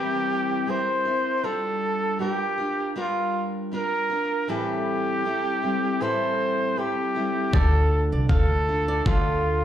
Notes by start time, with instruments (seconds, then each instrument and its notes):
Already playing: steel-string acoustic guitar E3 G3 C4 E4 A#4, flugelhorn G4
0.67 steel-string acoustic guitar G3 C4 E4 A#4, flugelhorn C5
1.05 steel-string acoustic guitar C4 E4 A#4
1.43 steel-string acoustic guitar G3 D4 F4, flugelhorn A4
2.19 steel-string acoustic guitar G3 D4 F4 A#4, flugelhorn G4
2.58 steel-string acoustic guitar D4 F4 A#4
2.96 steel-string acoustic guitar G3 D4 F4 A#4, flugelhorn F4
3.71 steel-string acoustic guitar G3 D4 F4 A#4, flugelhorn A#4
4.10 steel-string acoustic guitar D4 F4 A#4
4.48 steel-string acoustic guitar A2 E3 G3 C4 E4 A4, flugelhorn G4
5.24 steel-string acoustic guitar G3 C4 E4 A4
5.62 steel-string acoustic guitar G3 C4 E4 A4
6.00 steel-string acoustic guitar A2 E3 G3 C4 E4 A4, flugelhorn C5
6.76 steel-string acoustic guitar G3 C4 E4 A4, flugelhorn G4
7.15 steel-string acoustic guitar G3 C4 E4 A4
7.53 upright bass D2, steel-string acoustic guitar D3 A3 D4 F4 A4, flugelhorn A4, nylon-string guitar D5, kick
8.12 upright bass C2, nylon-string guitar D5
8.29 upright bass D2, steel-string acoustic guitar A3 D4 F4 A4, flugelhorn A4, nylon-string guitar F5, kick
8.67 steel-string acoustic guitar D4 F4 A4
8.88 nylon-string guitar D5
9.05 upright bass D2, steel-string acoustic guitar D3 A3 D4 F4 A4, flugelhorn F4, kick